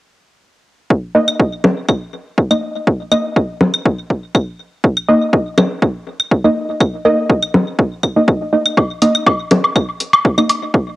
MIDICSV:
0, 0, Header, 1, 3, 480
1, 0, Start_track
1, 0, Tempo, 491803
1, 881, Time_signature, 4, 2, 24, 8
1, 10699, End_track
2, 0, Start_track
2, 0, Title_t, "Synth stab"
2, 0, Program_c, 0, 62
2, 1120, Note_on_c, 0, 58, 96
2, 1120, Note_on_c, 0, 63, 87
2, 1120, Note_on_c, 0, 75, 102
2, 1234, Note_off_c, 0, 58, 0
2, 1234, Note_off_c, 0, 63, 0
2, 1234, Note_off_c, 0, 75, 0
2, 2447, Note_on_c, 0, 63, 71
2, 2448, Note_on_c, 0, 58, 77
2, 2448, Note_on_c, 0, 75, 89
2, 2511, Note_off_c, 0, 58, 0
2, 2511, Note_off_c, 0, 63, 0
2, 2511, Note_off_c, 0, 75, 0
2, 3040, Note_on_c, 0, 63, 89
2, 3041, Note_on_c, 0, 58, 94
2, 3041, Note_on_c, 0, 75, 105
2, 3154, Note_off_c, 0, 58, 0
2, 3154, Note_off_c, 0, 63, 0
2, 3154, Note_off_c, 0, 75, 0
2, 4962, Note_on_c, 0, 58, 96
2, 4962, Note_on_c, 0, 63, 88
2, 4962, Note_on_c, 0, 75, 107
2, 5075, Note_off_c, 0, 58, 0
2, 5075, Note_off_c, 0, 63, 0
2, 5075, Note_off_c, 0, 75, 0
2, 6288, Note_on_c, 0, 63, 75
2, 6289, Note_on_c, 0, 58, 80
2, 6289, Note_on_c, 0, 75, 85
2, 6352, Note_off_c, 0, 58, 0
2, 6352, Note_off_c, 0, 63, 0
2, 6352, Note_off_c, 0, 75, 0
2, 6882, Note_on_c, 0, 58, 98
2, 6882, Note_on_c, 0, 63, 90
2, 6882, Note_on_c, 0, 75, 106
2, 6995, Note_off_c, 0, 58, 0
2, 6995, Note_off_c, 0, 63, 0
2, 6995, Note_off_c, 0, 75, 0
2, 7969, Note_on_c, 0, 58, 75
2, 7969, Note_on_c, 0, 63, 70
2, 7969, Note_on_c, 0, 75, 86
2, 8032, Note_off_c, 0, 58, 0
2, 8032, Note_off_c, 0, 63, 0
2, 8032, Note_off_c, 0, 75, 0
2, 8322, Note_on_c, 0, 58, 77
2, 8322, Note_on_c, 0, 75, 86
2, 8323, Note_on_c, 0, 63, 72
2, 8435, Note_off_c, 0, 58, 0
2, 8435, Note_off_c, 0, 63, 0
2, 8435, Note_off_c, 0, 75, 0
2, 8802, Note_on_c, 0, 58, 97
2, 8802, Note_on_c, 0, 63, 89
2, 8802, Note_on_c, 0, 75, 106
2, 8915, Note_off_c, 0, 58, 0
2, 8915, Note_off_c, 0, 63, 0
2, 8915, Note_off_c, 0, 75, 0
2, 10128, Note_on_c, 0, 58, 82
2, 10128, Note_on_c, 0, 63, 71
2, 10128, Note_on_c, 0, 75, 88
2, 10192, Note_off_c, 0, 58, 0
2, 10192, Note_off_c, 0, 63, 0
2, 10192, Note_off_c, 0, 75, 0
2, 10699, End_track
3, 0, Start_track
3, 0, Title_t, "Drums"
3, 881, Note_on_c, 9, 36, 105
3, 979, Note_off_c, 9, 36, 0
3, 1247, Note_on_c, 9, 75, 57
3, 1345, Note_off_c, 9, 75, 0
3, 1361, Note_on_c, 9, 36, 105
3, 1459, Note_off_c, 9, 36, 0
3, 1601, Note_on_c, 9, 61, 49
3, 1699, Note_off_c, 9, 61, 0
3, 1841, Note_on_c, 9, 36, 107
3, 1841, Note_on_c, 9, 75, 62
3, 1938, Note_off_c, 9, 75, 0
3, 1939, Note_off_c, 9, 36, 0
3, 2321, Note_on_c, 9, 36, 103
3, 2419, Note_off_c, 9, 36, 0
3, 2447, Note_on_c, 9, 75, 58
3, 2545, Note_off_c, 9, 75, 0
3, 2801, Note_on_c, 9, 36, 110
3, 2899, Note_off_c, 9, 36, 0
3, 3040, Note_on_c, 9, 75, 57
3, 3138, Note_off_c, 9, 75, 0
3, 3281, Note_on_c, 9, 36, 111
3, 3379, Note_off_c, 9, 36, 0
3, 3521, Note_on_c, 9, 61, 50
3, 3618, Note_off_c, 9, 61, 0
3, 3648, Note_on_c, 9, 75, 58
3, 3745, Note_off_c, 9, 75, 0
3, 3762, Note_on_c, 9, 36, 116
3, 3859, Note_off_c, 9, 36, 0
3, 4002, Note_on_c, 9, 36, 58
3, 4099, Note_off_c, 9, 36, 0
3, 4242, Note_on_c, 9, 36, 111
3, 4242, Note_on_c, 9, 75, 55
3, 4339, Note_off_c, 9, 36, 0
3, 4340, Note_off_c, 9, 75, 0
3, 4722, Note_on_c, 9, 36, 116
3, 4820, Note_off_c, 9, 36, 0
3, 4849, Note_on_c, 9, 75, 57
3, 4946, Note_off_c, 9, 75, 0
3, 5202, Note_on_c, 9, 36, 110
3, 5300, Note_off_c, 9, 36, 0
3, 5443, Note_on_c, 9, 61, 54
3, 5443, Note_on_c, 9, 75, 54
3, 5540, Note_off_c, 9, 61, 0
3, 5540, Note_off_c, 9, 75, 0
3, 5682, Note_on_c, 9, 36, 114
3, 5780, Note_off_c, 9, 36, 0
3, 6048, Note_on_c, 9, 75, 53
3, 6146, Note_off_c, 9, 75, 0
3, 6162, Note_on_c, 9, 36, 106
3, 6259, Note_off_c, 9, 36, 0
3, 6641, Note_on_c, 9, 75, 55
3, 6642, Note_on_c, 9, 36, 111
3, 6739, Note_off_c, 9, 36, 0
3, 6739, Note_off_c, 9, 75, 0
3, 7121, Note_on_c, 9, 36, 111
3, 7219, Note_off_c, 9, 36, 0
3, 7248, Note_on_c, 9, 75, 56
3, 7345, Note_off_c, 9, 75, 0
3, 7362, Note_on_c, 9, 61, 52
3, 7459, Note_off_c, 9, 61, 0
3, 7601, Note_on_c, 9, 36, 111
3, 7699, Note_off_c, 9, 36, 0
3, 7841, Note_on_c, 9, 36, 57
3, 7841, Note_on_c, 9, 75, 55
3, 7939, Note_off_c, 9, 36, 0
3, 7939, Note_off_c, 9, 75, 0
3, 8081, Note_on_c, 9, 36, 113
3, 8179, Note_off_c, 9, 36, 0
3, 8448, Note_on_c, 9, 75, 60
3, 8546, Note_off_c, 9, 75, 0
3, 8561, Note_on_c, 9, 36, 109
3, 8563, Note_on_c, 9, 76, 35
3, 8659, Note_off_c, 9, 36, 0
3, 8660, Note_off_c, 9, 76, 0
3, 8801, Note_on_c, 9, 42, 83
3, 8898, Note_off_c, 9, 42, 0
3, 8928, Note_on_c, 9, 75, 59
3, 9026, Note_off_c, 9, 75, 0
3, 9042, Note_on_c, 9, 36, 108
3, 9042, Note_on_c, 9, 76, 69
3, 9139, Note_off_c, 9, 36, 0
3, 9140, Note_off_c, 9, 76, 0
3, 9280, Note_on_c, 9, 42, 79
3, 9283, Note_on_c, 9, 61, 51
3, 9378, Note_off_c, 9, 42, 0
3, 9380, Note_off_c, 9, 61, 0
3, 9409, Note_on_c, 9, 76, 35
3, 9507, Note_off_c, 9, 76, 0
3, 9522, Note_on_c, 9, 36, 110
3, 9522, Note_on_c, 9, 75, 63
3, 9619, Note_off_c, 9, 36, 0
3, 9619, Note_off_c, 9, 75, 0
3, 9761, Note_on_c, 9, 42, 81
3, 9858, Note_off_c, 9, 42, 0
3, 9888, Note_on_c, 9, 76, 69
3, 9986, Note_off_c, 9, 76, 0
3, 10002, Note_on_c, 9, 36, 111
3, 10099, Note_off_c, 9, 36, 0
3, 10129, Note_on_c, 9, 75, 59
3, 10227, Note_off_c, 9, 75, 0
3, 10242, Note_on_c, 9, 42, 86
3, 10242, Note_on_c, 9, 76, 34
3, 10339, Note_off_c, 9, 42, 0
3, 10340, Note_off_c, 9, 76, 0
3, 10482, Note_on_c, 9, 36, 106
3, 10580, Note_off_c, 9, 36, 0
3, 10699, End_track
0, 0, End_of_file